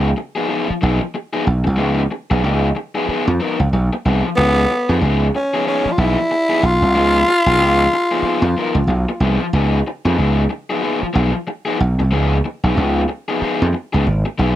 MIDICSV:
0, 0, Header, 1, 6, 480
1, 0, Start_track
1, 0, Tempo, 646552
1, 1324, Time_signature, 4, 2, 24, 8
1, 10806, End_track
2, 0, Start_track
2, 0, Title_t, "Tenor saxophone"
2, 0, Program_c, 0, 66
2, 3239, Note_on_c, 0, 59, 114
2, 3691, Note_off_c, 0, 59, 0
2, 3977, Note_on_c, 0, 61, 81
2, 4193, Note_off_c, 0, 61, 0
2, 4211, Note_on_c, 0, 61, 80
2, 4395, Note_on_c, 0, 65, 72
2, 4406, Note_off_c, 0, 61, 0
2, 4452, Note_on_c, 0, 64, 92
2, 4463, Note_off_c, 0, 65, 0
2, 4941, Note_on_c, 0, 65, 117
2, 4952, Note_off_c, 0, 64, 0
2, 6851, Note_off_c, 0, 65, 0
2, 10806, End_track
3, 0, Start_track
3, 0, Title_t, "Overdriven electric guitar"
3, 0, Program_c, 1, 29
3, 263, Note_on_c, 1, 68, 75
3, 271, Note_on_c, 1, 59, 62
3, 271, Note_on_c, 1, 63, 70
3, 276, Note_on_c, 1, 53, 60
3, 351, Note_off_c, 1, 53, 0
3, 352, Note_off_c, 1, 59, 0
3, 355, Note_off_c, 1, 63, 0
3, 360, Note_off_c, 1, 68, 0
3, 360, Note_on_c, 1, 53, 90
3, 361, Note_on_c, 1, 59, 92
3, 364, Note_on_c, 1, 63, 92
3, 369, Note_on_c, 1, 68, 92
3, 500, Note_off_c, 1, 68, 0
3, 504, Note_off_c, 1, 63, 0
3, 507, Note_off_c, 1, 59, 0
3, 534, Note_off_c, 1, 53, 0
3, 604, Note_on_c, 1, 53, 58
3, 608, Note_on_c, 1, 59, 64
3, 612, Note_on_c, 1, 63, 66
3, 617, Note_on_c, 1, 68, 72
3, 740, Note_off_c, 1, 68, 0
3, 743, Note_off_c, 1, 63, 0
3, 744, Note_off_c, 1, 59, 0
3, 749, Note_off_c, 1, 53, 0
3, 988, Note_on_c, 1, 68, 89
3, 990, Note_on_c, 1, 63, 97
3, 994, Note_on_c, 1, 59, 86
3, 998, Note_on_c, 1, 53, 75
3, 1068, Note_off_c, 1, 53, 0
3, 1073, Note_off_c, 1, 63, 0
3, 1076, Note_off_c, 1, 59, 0
3, 1079, Note_off_c, 1, 68, 0
3, 1309, Note_on_c, 1, 53, 98
3, 1314, Note_on_c, 1, 59, 95
3, 1314, Note_on_c, 1, 63, 100
3, 1318, Note_on_c, 1, 68, 93
3, 1488, Note_off_c, 1, 53, 0
3, 1491, Note_off_c, 1, 59, 0
3, 1491, Note_off_c, 1, 63, 0
3, 1493, Note_off_c, 1, 68, 0
3, 1710, Note_on_c, 1, 68, 60
3, 1714, Note_on_c, 1, 59, 54
3, 1715, Note_on_c, 1, 63, 52
3, 1716, Note_on_c, 1, 53, 50
3, 1790, Note_off_c, 1, 53, 0
3, 1796, Note_off_c, 1, 59, 0
3, 1799, Note_on_c, 1, 53, 89
3, 1800, Note_off_c, 1, 63, 0
3, 1804, Note_off_c, 1, 68, 0
3, 1805, Note_on_c, 1, 59, 99
3, 1809, Note_on_c, 1, 63, 109
3, 1813, Note_on_c, 1, 68, 115
3, 1973, Note_off_c, 1, 53, 0
3, 1976, Note_off_c, 1, 59, 0
3, 1978, Note_off_c, 1, 63, 0
3, 1980, Note_off_c, 1, 68, 0
3, 2189, Note_on_c, 1, 63, 64
3, 2189, Note_on_c, 1, 68, 76
3, 2195, Note_on_c, 1, 59, 59
3, 2197, Note_on_c, 1, 53, 58
3, 2279, Note_off_c, 1, 53, 0
3, 2279, Note_off_c, 1, 59, 0
3, 2285, Note_off_c, 1, 63, 0
3, 2285, Note_off_c, 1, 68, 0
3, 2288, Note_on_c, 1, 53, 63
3, 2288, Note_on_c, 1, 59, 71
3, 2295, Note_on_c, 1, 63, 74
3, 2296, Note_on_c, 1, 68, 82
3, 2421, Note_off_c, 1, 68, 0
3, 2425, Note_off_c, 1, 63, 0
3, 2430, Note_off_c, 1, 59, 0
3, 2457, Note_off_c, 1, 53, 0
3, 2523, Note_on_c, 1, 53, 55
3, 2525, Note_on_c, 1, 59, 59
3, 2530, Note_on_c, 1, 63, 65
3, 2532, Note_on_c, 1, 70, 55
3, 2668, Note_off_c, 1, 53, 0
3, 2669, Note_off_c, 1, 59, 0
3, 2672, Note_off_c, 1, 63, 0
3, 2672, Note_off_c, 1, 70, 0
3, 3012, Note_on_c, 1, 53, 74
3, 3016, Note_on_c, 1, 59, 82
3, 3021, Note_on_c, 1, 63, 81
3, 3021, Note_on_c, 1, 68, 83
3, 3149, Note_off_c, 1, 68, 0
3, 3154, Note_off_c, 1, 63, 0
3, 3160, Note_off_c, 1, 59, 0
3, 3179, Note_off_c, 1, 53, 0
3, 3245, Note_on_c, 1, 53, 72
3, 3251, Note_on_c, 1, 59, 83
3, 3254, Note_on_c, 1, 63, 85
3, 3260, Note_on_c, 1, 68, 93
3, 3415, Note_off_c, 1, 53, 0
3, 3419, Note_off_c, 1, 59, 0
3, 3420, Note_off_c, 1, 63, 0
3, 3423, Note_off_c, 1, 68, 0
3, 3632, Note_on_c, 1, 68, 53
3, 3638, Note_on_c, 1, 63, 54
3, 3639, Note_on_c, 1, 59, 49
3, 3640, Note_on_c, 1, 53, 45
3, 3716, Note_off_c, 1, 53, 0
3, 3720, Note_off_c, 1, 59, 0
3, 3724, Note_off_c, 1, 63, 0
3, 3725, Note_off_c, 1, 68, 0
3, 3725, Note_on_c, 1, 53, 83
3, 3729, Note_on_c, 1, 59, 98
3, 3733, Note_on_c, 1, 63, 87
3, 3734, Note_on_c, 1, 68, 106
3, 3895, Note_off_c, 1, 53, 0
3, 3897, Note_off_c, 1, 59, 0
3, 3899, Note_off_c, 1, 63, 0
3, 3900, Note_off_c, 1, 68, 0
3, 4110, Note_on_c, 1, 68, 62
3, 4115, Note_on_c, 1, 63, 58
3, 4118, Note_on_c, 1, 53, 50
3, 4120, Note_on_c, 1, 59, 59
3, 4195, Note_off_c, 1, 53, 0
3, 4199, Note_off_c, 1, 59, 0
3, 4204, Note_off_c, 1, 63, 0
3, 4204, Note_on_c, 1, 53, 70
3, 4206, Note_off_c, 1, 68, 0
3, 4208, Note_on_c, 1, 59, 68
3, 4213, Note_on_c, 1, 63, 86
3, 4216, Note_on_c, 1, 68, 86
3, 4356, Note_off_c, 1, 68, 0
3, 4359, Note_off_c, 1, 63, 0
3, 4362, Note_off_c, 1, 59, 0
3, 4375, Note_off_c, 1, 53, 0
3, 4446, Note_on_c, 1, 53, 64
3, 4452, Note_on_c, 1, 59, 59
3, 4454, Note_on_c, 1, 63, 68
3, 4461, Note_on_c, 1, 68, 65
3, 4583, Note_off_c, 1, 68, 0
3, 4589, Note_off_c, 1, 53, 0
3, 4589, Note_off_c, 1, 63, 0
3, 4592, Note_off_c, 1, 59, 0
3, 4821, Note_on_c, 1, 68, 102
3, 4828, Note_on_c, 1, 63, 91
3, 4830, Note_on_c, 1, 59, 83
3, 4835, Note_on_c, 1, 53, 78
3, 4922, Note_off_c, 1, 53, 0
3, 4922, Note_off_c, 1, 59, 0
3, 4922, Note_off_c, 1, 63, 0
3, 4926, Note_off_c, 1, 68, 0
3, 5160, Note_on_c, 1, 53, 85
3, 5169, Note_on_c, 1, 59, 77
3, 5172, Note_on_c, 1, 63, 93
3, 5173, Note_on_c, 1, 68, 95
3, 5333, Note_off_c, 1, 53, 0
3, 5338, Note_off_c, 1, 59, 0
3, 5339, Note_off_c, 1, 63, 0
3, 5339, Note_off_c, 1, 68, 0
3, 5543, Note_on_c, 1, 68, 64
3, 5549, Note_on_c, 1, 63, 62
3, 5553, Note_on_c, 1, 53, 50
3, 5554, Note_on_c, 1, 59, 50
3, 5632, Note_off_c, 1, 53, 0
3, 5633, Note_off_c, 1, 59, 0
3, 5637, Note_off_c, 1, 63, 0
3, 5641, Note_on_c, 1, 53, 87
3, 5642, Note_off_c, 1, 68, 0
3, 5642, Note_on_c, 1, 59, 85
3, 5646, Note_on_c, 1, 63, 97
3, 5652, Note_on_c, 1, 68, 98
3, 5813, Note_off_c, 1, 53, 0
3, 5814, Note_off_c, 1, 59, 0
3, 5816, Note_off_c, 1, 63, 0
3, 5819, Note_off_c, 1, 68, 0
3, 6024, Note_on_c, 1, 68, 63
3, 6027, Note_on_c, 1, 63, 64
3, 6030, Note_on_c, 1, 59, 63
3, 6034, Note_on_c, 1, 53, 60
3, 6115, Note_off_c, 1, 53, 0
3, 6117, Note_off_c, 1, 59, 0
3, 6122, Note_off_c, 1, 68, 0
3, 6124, Note_off_c, 1, 63, 0
3, 6124, Note_on_c, 1, 53, 73
3, 6126, Note_on_c, 1, 59, 80
3, 6132, Note_on_c, 1, 63, 86
3, 6134, Note_on_c, 1, 68, 92
3, 6266, Note_off_c, 1, 68, 0
3, 6270, Note_off_c, 1, 63, 0
3, 6273, Note_off_c, 1, 59, 0
3, 6295, Note_off_c, 1, 53, 0
3, 6363, Note_on_c, 1, 53, 69
3, 6367, Note_on_c, 1, 59, 68
3, 6374, Note_on_c, 1, 63, 77
3, 6376, Note_on_c, 1, 70, 76
3, 6500, Note_off_c, 1, 63, 0
3, 6502, Note_off_c, 1, 70, 0
3, 6505, Note_off_c, 1, 59, 0
3, 6507, Note_off_c, 1, 53, 0
3, 6843, Note_on_c, 1, 53, 84
3, 6846, Note_on_c, 1, 59, 77
3, 6850, Note_on_c, 1, 63, 92
3, 6853, Note_on_c, 1, 68, 80
3, 6980, Note_off_c, 1, 68, 0
3, 6982, Note_off_c, 1, 63, 0
3, 6987, Note_off_c, 1, 59, 0
3, 7014, Note_off_c, 1, 53, 0
3, 7085, Note_on_c, 1, 53, 73
3, 7085, Note_on_c, 1, 59, 85
3, 7091, Note_on_c, 1, 63, 89
3, 7095, Note_on_c, 1, 68, 89
3, 7255, Note_off_c, 1, 53, 0
3, 7255, Note_off_c, 1, 59, 0
3, 7258, Note_off_c, 1, 63, 0
3, 7260, Note_off_c, 1, 68, 0
3, 7463, Note_on_c, 1, 68, 55
3, 7466, Note_on_c, 1, 63, 58
3, 7472, Note_on_c, 1, 59, 48
3, 7474, Note_on_c, 1, 53, 49
3, 7546, Note_off_c, 1, 53, 0
3, 7548, Note_off_c, 1, 59, 0
3, 7552, Note_off_c, 1, 63, 0
3, 7555, Note_on_c, 1, 53, 92
3, 7556, Note_off_c, 1, 68, 0
3, 7557, Note_on_c, 1, 59, 96
3, 7561, Note_on_c, 1, 63, 92
3, 7565, Note_on_c, 1, 68, 98
3, 7730, Note_off_c, 1, 53, 0
3, 7731, Note_off_c, 1, 59, 0
3, 7733, Note_off_c, 1, 63, 0
3, 7735, Note_off_c, 1, 68, 0
3, 7941, Note_on_c, 1, 68, 62
3, 7945, Note_on_c, 1, 63, 67
3, 7947, Note_on_c, 1, 53, 61
3, 7949, Note_on_c, 1, 59, 58
3, 8021, Note_off_c, 1, 53, 0
3, 8029, Note_off_c, 1, 59, 0
3, 8030, Note_on_c, 1, 53, 74
3, 8031, Note_off_c, 1, 63, 0
3, 8032, Note_off_c, 1, 68, 0
3, 8038, Note_on_c, 1, 59, 89
3, 8040, Note_on_c, 1, 63, 82
3, 8041, Note_on_c, 1, 68, 91
3, 8167, Note_off_c, 1, 68, 0
3, 8169, Note_off_c, 1, 63, 0
3, 8175, Note_off_c, 1, 59, 0
3, 8208, Note_off_c, 1, 53, 0
3, 8264, Note_on_c, 1, 53, 69
3, 8268, Note_on_c, 1, 59, 67
3, 8275, Note_on_c, 1, 68, 74
3, 8276, Note_on_c, 1, 63, 76
3, 8402, Note_off_c, 1, 68, 0
3, 8408, Note_off_c, 1, 63, 0
3, 8412, Note_off_c, 1, 59, 0
3, 8418, Note_off_c, 1, 53, 0
3, 8652, Note_on_c, 1, 68, 88
3, 8659, Note_on_c, 1, 63, 97
3, 8661, Note_on_c, 1, 53, 70
3, 8661, Note_on_c, 1, 59, 76
3, 8742, Note_off_c, 1, 53, 0
3, 8744, Note_off_c, 1, 59, 0
3, 8746, Note_off_c, 1, 63, 0
3, 8746, Note_off_c, 1, 68, 0
3, 8991, Note_on_c, 1, 53, 83
3, 8999, Note_on_c, 1, 59, 82
3, 9003, Note_on_c, 1, 68, 94
3, 9005, Note_on_c, 1, 63, 82
3, 9168, Note_off_c, 1, 53, 0
3, 9172, Note_off_c, 1, 59, 0
3, 9174, Note_off_c, 1, 68, 0
3, 9175, Note_off_c, 1, 63, 0
3, 9385, Note_on_c, 1, 68, 53
3, 9389, Note_on_c, 1, 63, 60
3, 9391, Note_on_c, 1, 59, 54
3, 9394, Note_on_c, 1, 53, 49
3, 9465, Note_off_c, 1, 53, 0
3, 9471, Note_off_c, 1, 59, 0
3, 9474, Note_on_c, 1, 53, 91
3, 9476, Note_off_c, 1, 68, 0
3, 9477, Note_off_c, 1, 63, 0
3, 9480, Note_on_c, 1, 59, 103
3, 9485, Note_on_c, 1, 68, 98
3, 9486, Note_on_c, 1, 63, 101
3, 9650, Note_off_c, 1, 53, 0
3, 9653, Note_off_c, 1, 59, 0
3, 9655, Note_off_c, 1, 68, 0
3, 9656, Note_off_c, 1, 63, 0
3, 9861, Note_on_c, 1, 68, 63
3, 9865, Note_on_c, 1, 63, 60
3, 9871, Note_on_c, 1, 59, 55
3, 9872, Note_on_c, 1, 53, 53
3, 9949, Note_off_c, 1, 53, 0
3, 9958, Note_off_c, 1, 59, 0
3, 9958, Note_on_c, 1, 53, 81
3, 9960, Note_off_c, 1, 63, 0
3, 9961, Note_off_c, 1, 68, 0
3, 9967, Note_on_c, 1, 59, 82
3, 9969, Note_on_c, 1, 63, 89
3, 9970, Note_on_c, 1, 68, 97
3, 10132, Note_off_c, 1, 53, 0
3, 10136, Note_off_c, 1, 59, 0
3, 10137, Note_off_c, 1, 63, 0
3, 10138, Note_off_c, 1, 68, 0
3, 10340, Note_on_c, 1, 68, 52
3, 10344, Note_on_c, 1, 63, 54
3, 10349, Note_on_c, 1, 59, 57
3, 10354, Note_on_c, 1, 53, 51
3, 10432, Note_off_c, 1, 53, 0
3, 10434, Note_off_c, 1, 63, 0
3, 10437, Note_off_c, 1, 59, 0
3, 10437, Note_off_c, 1, 68, 0
3, 10676, Note_on_c, 1, 53, 85
3, 10682, Note_on_c, 1, 63, 97
3, 10685, Note_on_c, 1, 59, 100
3, 10685, Note_on_c, 1, 68, 101
3, 10806, Note_off_c, 1, 53, 0
3, 10806, Note_off_c, 1, 59, 0
3, 10806, Note_off_c, 1, 63, 0
3, 10806, Note_off_c, 1, 68, 0
3, 10806, End_track
4, 0, Start_track
4, 0, Title_t, "Slap bass"
4, 0, Program_c, 2, 36
4, 0, Note_on_c, 2, 37, 97
4, 93, Note_off_c, 2, 37, 0
4, 615, Note_on_c, 2, 35, 85
4, 733, Note_off_c, 2, 35, 0
4, 1090, Note_on_c, 2, 35, 82
4, 1210, Note_off_c, 2, 35, 0
4, 1238, Note_on_c, 2, 36, 97
4, 1327, Note_off_c, 2, 36, 0
4, 1327, Note_on_c, 2, 37, 103
4, 1529, Note_off_c, 2, 37, 0
4, 1713, Note_on_c, 2, 35, 76
4, 1812, Note_off_c, 2, 35, 0
4, 1812, Note_on_c, 2, 37, 83
4, 2011, Note_off_c, 2, 37, 0
4, 2431, Note_on_c, 2, 41, 84
4, 2511, Note_off_c, 2, 41, 0
4, 2670, Note_on_c, 2, 37, 90
4, 2750, Note_off_c, 2, 37, 0
4, 2768, Note_on_c, 2, 35, 90
4, 2888, Note_off_c, 2, 35, 0
4, 3009, Note_on_c, 2, 36, 83
4, 3128, Note_off_c, 2, 36, 0
4, 3249, Note_on_c, 2, 37, 115
4, 3449, Note_off_c, 2, 37, 0
4, 3631, Note_on_c, 2, 41, 74
4, 3711, Note_off_c, 2, 41, 0
4, 3723, Note_on_c, 2, 37, 97
4, 3926, Note_off_c, 2, 37, 0
4, 4438, Note_on_c, 2, 35, 89
4, 4562, Note_off_c, 2, 35, 0
4, 4922, Note_on_c, 2, 35, 89
4, 5044, Note_off_c, 2, 35, 0
4, 5061, Note_on_c, 2, 36, 87
4, 5156, Note_off_c, 2, 36, 0
4, 5156, Note_on_c, 2, 37, 103
4, 5362, Note_off_c, 2, 37, 0
4, 5540, Note_on_c, 2, 35, 86
4, 5629, Note_off_c, 2, 35, 0
4, 5629, Note_on_c, 2, 37, 100
4, 5838, Note_off_c, 2, 37, 0
4, 6250, Note_on_c, 2, 41, 95
4, 6338, Note_off_c, 2, 41, 0
4, 6494, Note_on_c, 2, 37, 90
4, 6580, Note_off_c, 2, 37, 0
4, 6586, Note_on_c, 2, 35, 89
4, 6715, Note_off_c, 2, 35, 0
4, 6832, Note_on_c, 2, 36, 96
4, 6958, Note_off_c, 2, 36, 0
4, 7076, Note_on_c, 2, 37, 111
4, 7281, Note_off_c, 2, 37, 0
4, 7462, Note_on_c, 2, 41, 99
4, 7545, Note_off_c, 2, 41, 0
4, 7561, Note_on_c, 2, 37, 80
4, 7764, Note_off_c, 2, 37, 0
4, 8280, Note_on_c, 2, 35, 86
4, 8402, Note_off_c, 2, 35, 0
4, 8763, Note_on_c, 2, 35, 97
4, 8884, Note_off_c, 2, 35, 0
4, 8906, Note_on_c, 2, 36, 91
4, 9004, Note_off_c, 2, 36, 0
4, 9004, Note_on_c, 2, 37, 86
4, 9206, Note_off_c, 2, 37, 0
4, 9380, Note_on_c, 2, 35, 75
4, 9464, Note_off_c, 2, 35, 0
4, 9481, Note_on_c, 2, 37, 100
4, 9685, Note_off_c, 2, 37, 0
4, 10109, Note_on_c, 2, 41, 84
4, 10189, Note_off_c, 2, 41, 0
4, 10349, Note_on_c, 2, 37, 87
4, 10429, Note_off_c, 2, 37, 0
4, 10441, Note_on_c, 2, 32, 96
4, 10564, Note_off_c, 2, 32, 0
4, 10683, Note_on_c, 2, 35, 85
4, 10806, Note_off_c, 2, 35, 0
4, 10806, End_track
5, 0, Start_track
5, 0, Title_t, "Muted overdriven electric guitar strokes"
5, 124, Note_on_c, 9, 29, 45
5, 198, Note_off_c, 9, 29, 0
5, 508, Note_on_c, 9, 29, 54
5, 583, Note_off_c, 9, 29, 0
5, 749, Note_on_c, 9, 29, 42
5, 823, Note_off_c, 9, 29, 0
5, 848, Note_on_c, 9, 29, 44
5, 923, Note_off_c, 9, 29, 0
5, 1077, Note_on_c, 9, 29, 44
5, 1151, Note_off_c, 9, 29, 0
5, 1219, Note_on_c, 9, 29, 41
5, 1293, Note_off_c, 9, 29, 0
5, 1567, Note_on_c, 9, 29, 42
5, 1641, Note_off_c, 9, 29, 0
5, 2044, Note_on_c, 9, 29, 38
5, 2118, Note_off_c, 9, 29, 0
5, 2430, Note_on_c, 9, 29, 49
5, 2504, Note_off_c, 9, 29, 0
5, 2675, Note_on_c, 9, 29, 34
5, 2749, Note_off_c, 9, 29, 0
5, 2771, Note_on_c, 9, 29, 32
5, 2845, Note_off_c, 9, 29, 0
5, 2916, Note_on_c, 9, 29, 50
5, 2990, Note_off_c, 9, 29, 0
5, 3158, Note_on_c, 9, 29, 49
5, 3232, Note_off_c, 9, 29, 0
5, 3490, Note_on_c, 9, 29, 48
5, 3565, Note_off_c, 9, 29, 0
5, 3971, Note_on_c, 9, 29, 41
5, 4045, Note_off_c, 9, 29, 0
5, 4365, Note_on_c, 9, 29, 36
5, 4439, Note_off_c, 9, 29, 0
5, 4592, Note_on_c, 9, 29, 49
5, 4667, Note_off_c, 9, 29, 0
5, 4685, Note_on_c, 9, 29, 40
5, 4759, Note_off_c, 9, 29, 0
5, 4930, Note_on_c, 9, 29, 35
5, 5005, Note_off_c, 9, 29, 0
5, 5070, Note_on_c, 9, 29, 45
5, 5144, Note_off_c, 9, 29, 0
5, 5404, Note_on_c, 9, 29, 39
5, 5479, Note_off_c, 9, 29, 0
5, 5886, Note_on_c, 9, 29, 35
5, 5960, Note_off_c, 9, 29, 0
5, 6275, Note_on_c, 9, 29, 43
5, 6349, Note_off_c, 9, 29, 0
5, 6505, Note_on_c, 9, 29, 46
5, 6580, Note_off_c, 9, 29, 0
5, 6601, Note_on_c, 9, 29, 44
5, 6675, Note_off_c, 9, 29, 0
5, 6746, Note_on_c, 9, 29, 49
5, 6820, Note_off_c, 9, 29, 0
5, 6989, Note_on_c, 9, 29, 44
5, 7063, Note_off_c, 9, 29, 0
5, 7327, Note_on_c, 9, 29, 40
5, 7401, Note_off_c, 9, 29, 0
5, 7793, Note_on_c, 9, 29, 45
5, 7867, Note_off_c, 9, 29, 0
5, 8176, Note_on_c, 9, 29, 47
5, 8251, Note_off_c, 9, 29, 0
5, 8411, Note_on_c, 9, 29, 41
5, 8485, Note_off_c, 9, 29, 0
5, 8517, Note_on_c, 9, 29, 47
5, 8591, Note_off_c, 9, 29, 0
5, 8751, Note_on_c, 9, 29, 51
5, 8825, Note_off_c, 9, 29, 0
5, 8903, Note_on_c, 9, 29, 45
5, 8977, Note_off_c, 9, 29, 0
5, 9240, Note_on_c, 9, 29, 47
5, 9314, Note_off_c, 9, 29, 0
5, 9712, Note_on_c, 9, 29, 44
5, 9786, Note_off_c, 9, 29, 0
5, 10194, Note_on_c, 9, 29, 42
5, 10269, Note_off_c, 9, 29, 0
5, 10441, Note_on_c, 9, 29, 32
5, 10515, Note_off_c, 9, 29, 0
5, 10582, Note_on_c, 9, 29, 48
5, 10656, Note_off_c, 9, 29, 0
5, 10806, End_track
6, 0, Start_track
6, 0, Title_t, "Muted slap bass strokes"
6, 522, Note_on_c, 9, 29, 48
6, 596, Note_off_c, 9, 29, 0
6, 2290, Note_on_c, 9, 29, 47
6, 2364, Note_off_c, 9, 29, 0
6, 4346, Note_on_c, 9, 29, 43
6, 4421, Note_off_c, 9, 29, 0
6, 6107, Note_on_c, 9, 29, 45
6, 6181, Note_off_c, 9, 29, 0
6, 8186, Note_on_c, 9, 29, 43
6, 8260, Note_off_c, 9, 29, 0
6, 9961, Note_on_c, 9, 29, 47
6, 10035, Note_off_c, 9, 29, 0
6, 10806, End_track
0, 0, End_of_file